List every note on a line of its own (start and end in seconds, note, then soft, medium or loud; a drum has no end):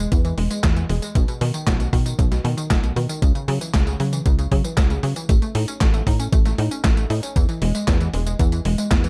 0.12 0.33 E2 loud
0.12 0.22 E3 medium
0.12 kick loud
0.12 closed hi-hat medium
0.12 tambourine soft
0.25 0.35 E3 medium
0.25 closed hi-hat soft
0.25 tambourine soft
0.38 0.49 E1 medium
0.38 0.48 G#3 medium
0.38 open hi-hat loud
0.51 0.61 G#3 medium
0.51 closed hi-hat soft
0.51 tambourine medium
0.64 0.85 E2 medium
0.64 0.74 E3 medium
0.64 kick loud
0.64 snare loud
0.64 clap loud
0.64 closed hi-hat medium
0.64 tambourine medium
0.76 0.87 E3 medium
0.76 closed hi-hat soft
0.76 tambourine soft
0.89 1.00 E1 medium
0.89 1.00 G#3 medium
0.89 open hi-hat medium
1.02 1.13 G#3 medium
1.02 closed hi-hat soft
1.02 tambourine medium
1.15 1.26 B1 loud
1.15 1.25 B2 medium
1.15 kick loud
1.15 closed hi-hat loud
1.15 tambourine soft
1.28 1.39 B2 medium
1.28 closed hi-hat soft
1.28 tambourine soft
1.41 1.52 B2 loud
1.41 1.51 D#3 medium
1.41 open hi-hat loud
1.54 1.64 D#3 medium
1.54 closed hi-hat soft
1.54 tambourine medium
1.67 1.89 B1 loud
1.67 1.77 B2 medium
1.67 kick loud
1.67 snare loud
1.67 clap medium
1.67 closed hi-hat medium
1.67 tambourine medium
1.80 1.90 B2 medium
1.80 closed hi-hat soft
1.80 tambourine soft
1.93 2.14 B2 medium
1.93 2.03 D#3 medium
1.93 kick medium
1.93 open hi-hat medium
2.06 2.16 D#3 medium
2.06 closed hi-hat soft
2.06 tambourine medium
2.19 2.40 B1 loud
2.19 2.29 B2 medium
2.19 kick loud
2.19 closed hi-hat medium
2.19 tambourine soft
2.32 2.42 B2 medium
2.32 snare soft
2.32 closed hi-hat soft
2.32 tambourine soft
2.44 2.55 B2 medium
2.44 2.55 D#3 medium
2.44 open hi-hat loud
2.57 2.68 D#3 medium
2.57 closed hi-hat soft
2.57 tambourine medium
2.70 2.92 B1 medium
2.70 2.81 B2 medium
2.70 kick loud
2.70 snare loud
2.70 clap loud
2.70 closed hi-hat loud
2.70 tambourine soft
2.83 2.94 B2 medium
2.83 closed hi-hat soft
2.83 tambourine soft
2.96 3.07 B2 medium
2.96 3.07 D#3 medium
2.96 open hi-hat medium
3.09 3.20 D#3 medium
3.09 closed hi-hat soft
3.09 tambourine medium
3.22 3.33 C#2 loud
3.22 3.32 C#3 medium
3.22 kick loud
3.22 closed hi-hat medium
3.22 tambourine medium
3.35 3.45 C#3 medium
3.35 closed hi-hat soft
3.35 tambourine soft
3.48 3.59 C#3 loud
3.48 3.58 F#3 medium
3.48 open hi-hat loud
3.61 3.71 E3 medium
3.61 closed hi-hat soft
3.61 tambourine medium
3.74 3.95 C#2 loud
3.74 3.84 C#3 medium
3.74 kick loud
3.74 snare loud
3.74 clap medium
3.74 closed hi-hat medium
3.74 tambourine medium
3.87 3.97 C#3 medium
3.87 closed hi-hat soft
3.87 tambourine soft
4.00 4.21 C#3 medium
4.00 4.10 F#3 medium
4.00 open hi-hat medium
4.13 4.23 E3 medium
4.13 closed hi-hat soft
4.13 tambourine medium
4.26 4.47 C#2 loud
4.26 4.36 C#3 medium
4.26 kick loud
4.26 closed hi-hat medium
4.26 tambourine medium
4.39 4.49 C#3 medium
4.39 closed hi-hat soft
4.39 tambourine soft
4.51 4.62 C#3 medium
4.51 4.62 F#3 medium
4.51 kick medium
4.51 open hi-hat loud
4.64 4.75 E3 medium
4.64 closed hi-hat soft
4.64 tambourine medium
4.77 4.99 C#2 medium
4.77 4.88 C#3 medium
4.77 kick loud
4.77 snare loud
4.77 clap medium
4.77 closed hi-hat medium
4.77 tambourine soft
4.90 5.01 C#3 medium
4.90 closed hi-hat soft
4.90 tambourine soft
5.03 5.14 C#3 medium
5.03 5.14 F#3 medium
5.03 open hi-hat medium
5.16 5.26 E3 medium
5.16 closed hi-hat soft
5.16 tambourine medium
5.29 5.40 A1 loud
5.29 5.39 A3 medium
5.29 kick loud
5.29 closed hi-hat medium
5.29 tambourine medium
5.42 5.52 A3 medium
5.42 closed hi-hat soft
5.42 tambourine soft
5.55 5.66 A2 loud
5.55 5.65 D#4 medium
5.55 open hi-hat loud
5.68 5.78 C#4 medium
5.68 closed hi-hat soft
5.68 tambourine medium
5.81 6.02 A1 loud
5.81 5.91 A3 medium
5.81 kick loud
5.81 snare loud
5.81 clap medium
5.81 closed hi-hat medium
5.81 tambourine medium
5.94 6.04 A3 medium
5.94 closed hi-hat soft
5.94 tambourine soft
6.07 6.28 A2 medium
6.07 6.17 D#4 medium
6.07 kick medium
6.07 open hi-hat loud
6.20 6.30 C#4 medium
6.20 closed hi-hat soft
6.20 tambourine medium
6.33 6.54 A1 loud
6.33 6.43 A3 medium
6.33 kick loud
6.33 closed hi-hat medium
6.33 tambourine medium
6.45 6.56 A3 medium
6.45 snare soft
6.45 closed hi-hat soft
6.45 tambourine soft
6.58 6.69 A2 medium
6.58 6.69 D#4 medium
6.58 open hi-hat loud
6.71 6.82 C#4 medium
6.71 closed hi-hat soft
6.71 tambourine medium
6.84 7.06 A1 medium
6.84 6.94 A3 medium
6.84 kick loud
6.84 snare loud
6.84 clap medium
6.84 closed hi-hat medium
6.84 tambourine medium
6.97 7.07 A3 medium
6.97 closed hi-hat soft
6.97 tambourine soft
7.10 7.21 A2 medium
7.10 7.20 D#4 medium
7.10 open hi-hat medium
7.23 7.33 C#4 medium
7.23 closed hi-hat soft
7.23 tambourine medium
7.36 7.47 E2 loud
7.36 7.46 E3 medium
7.36 kick loud
7.36 closed hi-hat medium
7.36 tambourine medium
7.49 7.59 E3 medium
7.49 closed hi-hat soft
7.49 tambourine soft
7.62 7.73 E1 loud
7.62 7.72 G#3 medium
7.62 open hi-hat loud
7.75 7.85 G#3 medium
7.75 closed hi-hat soft
7.75 tambourine medium
7.88 8.09 E2 loud
7.88 7.98 E3 medium
7.88 kick loud
7.88 snare loud
7.88 clap medium
7.88 closed hi-hat medium
7.88 tambourine medium
8.01 8.11 E3 medium
8.01 closed hi-hat soft
8.01 tambourine soft
8.13 8.35 E1 medium
8.13 8.24 G#3 medium
8.13 open hi-hat loud
8.26 8.37 G#3 medium
8.26 closed hi-hat soft
8.26 tambourine medium
8.39 8.61 E2 loud
8.39 8.50 E3 medium
8.39 kick loud
8.39 closed hi-hat medium
8.39 tambourine medium
8.52 8.63 E3 medium
8.52 closed hi-hat soft
8.52 tambourine soft
8.65 8.76 E1 loud
8.65 8.76 G#3 medium
8.65 open hi-hat loud
8.78 8.89 G#3 medium
8.78 closed hi-hat soft
8.78 tambourine medium
8.91 9.09 E2 medium
8.91 9.01 E3 medium
8.91 kick loud
8.91 snare loud
8.91 clap medium
8.91 closed hi-hat medium
8.91 tambourine medium
9.04 9.09 E3 medium
9.04 closed hi-hat soft
9.04 tambourine soft